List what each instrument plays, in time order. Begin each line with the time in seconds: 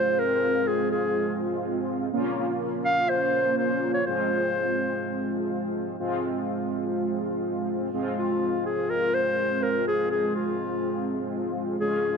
Already playing: analog polysynth G#3 C4 F4, clarinet C5
0.19 clarinet A#4
0.68 clarinet G#4
0.92 clarinet G#4
2.13 analog polysynth A#3 C#4 F4
2.85 clarinet F5
3.09 clarinet C5
3.58 clarinet C5
3.94 clarinet C#5
4.06 analog polysynth G#3 C4 F4, clarinet C5
6.00 analog polysynth G#3 C4 F4
7.93 analog polysynth G#3 C4 F4
8.18 clarinet F4
8.66 clarinet G#4
8.90 clarinet A#4
9.15 clarinet C5
9.63 clarinet A#4
9.87 clarinet G#4
10.11 clarinet G#4
10.35 clarinet F4
11.80 analog polysynth G#3 C#4 F4, clarinet G#4